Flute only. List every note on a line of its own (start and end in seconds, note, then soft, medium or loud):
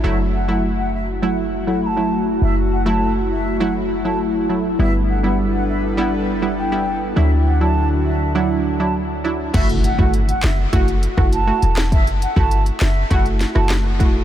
0.04 0.17 E5 loud
0.34 0.47 F#5 medium
0.49 0.61 F#5 medium
0.78 0.91 F#5 medium
0.93 1.06 E5 medium
1.23 1.36 F#5 medium
1.68 1.80 F#5 medium
1.82 2.24 A5 medium
1.82 1.87 B5 medium
2.42 2.55 E5 loud
2.71 2.84 F#5 medium
2.86 3.12 A5 medium
3.31 3.57 E5 medium
3.61 3.73 F#5 medium
4.05 4.18 A5 medium
4.79 4.92 E5 loud
5.09 5.22 F#5 medium
5.24 5.37 F#5 medium
5.53 5.66 F#5 medium
5.68 5.81 E5 medium
5.98 6.11 F#5 medium
6.42 6.55 F#5 medium
6.57 6.99 G5 medium
7.17 7.30 E5 loud
7.46 7.59 F#5 medium
7.61 7.87 A5 medium
8.06 8.31 E5 medium
8.35 8.48 F#5 medium
8.80 8.93 A5 medium
9.54 9.67 E5 loud
9.84 9.97 F#5 medium
9.99 10.12 F#5 medium
10.29 10.41 F#5 medium
10.44 10.56 E5 medium
10.73 10.86 F#5 medium
11.18 11.31 F#5 medium
11.32 11.74 A5 medium
11.92 12.05 E5 loud
12.22 12.35 F#5 medium
12.37 12.62 A5 medium
12.81 13.07 E5 medium
13.11 13.24 F#5 medium
13.56 13.69 A5 medium